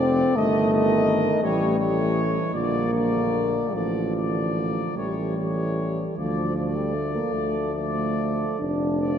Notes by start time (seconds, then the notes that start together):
Already playing: F1 F3 A4 D5
0.00 C4
0.36 G1 D#3 A3 A#4 D#5
0.71 D#3 A#4 D#5
1.43 A1 E3 G3 A4 C#5
1.79 E3 A4 C#5
2.53 A#1 D3 A#3 F4 D5
2.93 D3 F4 D5
3.75 A1 D3 F3 A4 D5
4.16 D3 A4 D5
4.96 A1 E3 G3 A4 C#5
5.37 E3 A4 C#5
6.17 D2 F3 A4 D5
6.56 F3 A4 D5
6.75 G3
6.94 A3
7.14 A#3
7.33 D2 A3
7.74 F3 A4 D5
8.59 F1 D4
8.98 F3 A4 D5